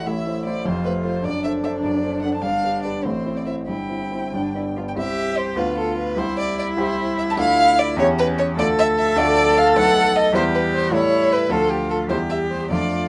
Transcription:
0.06 0.25 A1 medium
0.06 0.25 A2 medium
0.06 0.64 E4 medium
0.06 0.45 E5 medium
0.26 0.44 A3 soft
0.26 0.44 E4 soft
0.26 0.44 C5 soft
0.45 0.63 A3 soft
0.45 0.64 E4 soft
0.45 0.64 C5 medium
0.45 0.68 D5 medium
0.65 0.84 F1 medium
0.65 0.84 F2 medium
0.65 1.23 F4 medium
0.65 0.85 C5 medium
0.85 1.02 A3 medium
0.85 1.03 F4 soft
0.85 0.93 B4 medium
0.85 1.03 C5 medium
1.04 1.22 A3 soft
1.04 1.22 F4 soft
1.04 1.26 C5 medium
1.04 1.22 C5 soft
1.24 1.43 F#1 medium
1.24 1.43 F#2 medium
1.24 2.40 D4 medium
1.24 1.43 D5 medium
1.44 1.62 D4 soft
1.44 1.62 A4 soft
1.44 1.62 C5 soft
1.44 1.52 E5 medium
1.63 1.81 D4 medium
1.63 1.81 A4 soft
1.63 1.81 C5 medium
1.63 1.72 E5 medium
1.83 2.02 F#1 medium
1.83 2.02 F#2 medium
1.83 2.21 D5 medium
2.03 2.20 D4 soft
2.03 2.21 A4 soft
2.03 2.21 C5 medium
2.22 2.41 D4 soft
2.22 2.41 A4 soft
2.22 2.41 C5 soft
2.22 2.32 F#5 medium
2.34 2.43 A5 medium
2.42 2.62 G1 medium
2.42 2.62 G2 medium
2.42 3.06 D4 medium
2.42 2.82 F5 medium
2.63 2.82 D4 soft
2.63 2.82 G4 soft
2.63 2.82 B4 soft
2.83 3.03 D4 soft
2.83 3.03 G4 soft
2.83 3.03 B4 soft
2.83 3.06 D5 medium
3.04 3.25 A1 medium
3.04 3.25 A2 medium
3.04 3.67 C4 medium
3.04 3.38 C5 medium
3.25 3.44 C4 soft
3.25 3.45 E4 soft
3.25 3.45 C5 soft
3.37 3.46 D5 medium
3.46 3.66 C4 soft
3.46 3.66 E4 soft
3.46 3.66 C5 soft
3.46 3.54 E5 medium
3.68 3.89 G1 soft
3.68 3.89 G2 medium
3.68 4.28 E4 medium
3.68 4.74 G5 medium
3.90 4.09 C4 soft
3.90 4.10 E4 soft
3.90 4.10 C5 soft
4.12 4.31 C4 soft
4.12 4.31 E4 soft
4.12 4.32 C5 soft
4.33 4.54 G1 medium
4.33 4.54 G2 medium
4.33 4.54 D4 medium
4.55 4.74 B3 soft
4.55 4.75 D4 soft
4.55 4.63 E4 medium
4.55 4.75 D5 soft
4.76 4.95 B3 soft
4.76 4.95 D4 soft
4.76 4.84 F4 medium
4.76 4.96 D5 soft
4.88 4.92 G5 medium
4.95 5.55 C2 medium
4.95 5.56 C4 soft
4.95 5.56 E4 soft
4.95 5.59 G4 medium
4.95 5.56 C5 soft
4.95 5.39 E5 loud
5.38 5.59 C5 medium
5.56 6.16 D2 medium
5.56 6.16 B3 medium
5.56 6.16 F4 medium
5.56 6.17 F4 medium
5.56 5.77 B4 loud
5.56 6.16 F5 medium
5.78 5.97 A4 medium
5.98 6.20 B4 medium
6.16 6.76 C2 medium
6.16 6.76 E4 medium
6.16 8.00 E4 loud
6.16 6.77 G4 medium
6.16 6.77 C5 soft
6.16 6.38 C5 loud
6.39 6.58 D5 loud
6.59 6.67 D5 loud
6.77 7.37 C2 medium
6.77 7.37 E4 medium
6.77 7.37 G4 medium
6.77 7.37 C5 medium
6.77 7.18 C5 loud
7.18 7.23 E5 loud
7.30 7.34 A5 loud
7.37 7.96 D2 medium
7.37 7.96 D4 medium
7.37 7.96 F4 medium
7.37 7.97 A4 medium
7.37 7.80 F5 loud
7.79 7.98 D5 loud
7.96 8.56 E2 loud
7.96 8.56 C#4 medium
7.96 8.57 C#4 medium
7.96 8.56 E4 medium
7.96 8.56 G4 medium
7.96 8.07 C#5 loud
8.19 8.27 B4 loud
8.38 8.46 C#5 loud
8.57 9.15 D2 medium
8.57 9.15 A3 medium
8.57 9.15 F4 medium
8.57 10.31 A4 loud
8.57 9.16 A4 medium
8.57 8.67 D5 loud
8.79 8.87 E5 loud
8.99 9.19 E5 loud
9.16 9.74 D2 loud
9.16 9.74 A3 medium
9.16 9.74 F4 medium
9.16 9.75 A4 medium
9.16 9.59 D5 loud
9.58 9.67 F5 loud
9.75 10.32 B1 medium
9.75 10.32 A3 medium
9.75 10.33 D#4 medium
9.75 10.33 B4 medium
9.75 10.17 F#5 loud
10.16 10.34 D#5 loud
10.33 10.90 E2 medium
10.33 10.90 G3 medium
10.33 10.90 E4 medium
10.33 10.95 G4 loud
10.33 10.91 B4 medium
10.33 10.42 C5 loud
10.55 10.62 B4 loud
10.74 10.93 C5 loud
10.91 11.49 A2 medium
10.91 11.49 G3 medium
10.91 11.49 E4 medium
10.91 11.54 E4 loud
10.91 11.49 A4 medium
10.91 11.34 C#5 loud
11.32 11.53 B4 loud
11.50 12.08 D2 medium
11.50 12.08 F3 medium
11.50 12.08 F4 medium
11.50 12.10 F4 medium
11.50 12.08 A4 medium
11.50 11.72 A4 loud
11.71 11.89 G4 loud
11.90 11.98 A4 medium
12.08 12.69 E2 medium
12.08 12.69 G3 medium
12.08 12.69 E4 medium
12.08 12.70 G4 medium
12.08 12.70 G4 loud
12.08 12.17 C5 loud
12.30 12.38 E5 medium
12.51 12.70 C5 medium
12.70 13.08 F2 medium
12.70 13.08 A3 medium
12.70 13.08 D4 medium
12.70 13.08 F4 medium
12.70 13.08 D5 loud

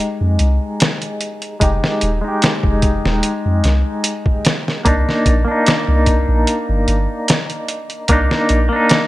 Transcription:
0.00 1.55 G#3 medium
0.00 1.57 D#4 medium
0.00 1.59 G4 medium
0.21 0.38 F2 medium
0.39 0.59 C2 medium
0.39 closed hi-hat medium
0.80 snare loud
0.80 closed hi-hat medium
1.02 closed hi-hat soft
1.21 closed hi-hat medium
1.42 closed hi-hat soft
1.60 1.80 F1 loud
1.60 2.18 G#3 medium
1.60 2.18 D#4 medium
1.60 2.19 G4 medium
1.60 kick loud
1.60 closed hi-hat medium
1.84 snare medium
2.01 2.21 D#1 medium
2.01 closed hi-hat medium
2.21 4.80 G#3 medium
2.21 4.82 D#4 medium
2.28 4.84 G4 loud
2.42 snare loud
2.42 closed hi-hat medium
2.63 2.99 F1 medium
2.63 kick medium
2.82 kick medium
2.82 closed hi-hat medium
3.05 3.22 D#1 loud
3.05 snare soft
3.23 closed hi-hat medium
3.46 3.62 F2 medium
3.64 3.83 C2 medium
3.64 snare soft
3.64 closed hi-hat medium
4.04 closed hi-hat medium
4.26 kick medium
4.45 snare loud
4.45 closed hi-hat medium
4.68 snare soft
4.85 5.05 C2 loud
4.85 5.42 A#3 medium
4.85 5.43 D4 medium
4.85 5.44 D#4 medium
4.85 kick loud
4.85 closed hi-hat medium
5.09 snare soft
5.26 5.45 A#1 loud
5.26 kick medium
5.26 closed hi-hat medium
5.45 8.04 A#3 medium
5.45 8.05 D4 medium
5.51 8.07 D#4 medium
5.66 snare loud
5.66 closed hi-hat medium
5.88 6.24 C2 loud
6.06 kick medium
6.06 closed hi-hat medium
6.29 6.46 A#1 loud
6.47 closed hi-hat medium
6.69 6.86 G1 medium
6.88 7.07 G1 medium
6.88 closed hi-hat medium
7.28 snare loud
7.28 closed hi-hat medium
7.50 closed hi-hat soft
7.68 closed hi-hat medium
7.90 closed hi-hat soft
8.08 8.29 C2 loud
8.08 8.67 A#3 medium
8.08 8.67 D4 medium
8.08 kick loud
8.08 closed hi-hat medium
8.13 8.68 D#4 medium
8.31 snare medium
8.49 8.69 A#1 medium
8.49 closed hi-hat medium
8.69 9.07 A#3 medium
8.69 9.07 D4 medium
8.76 9.07 D#4 medium
8.89 snare loud
8.89 closed hi-hat medium

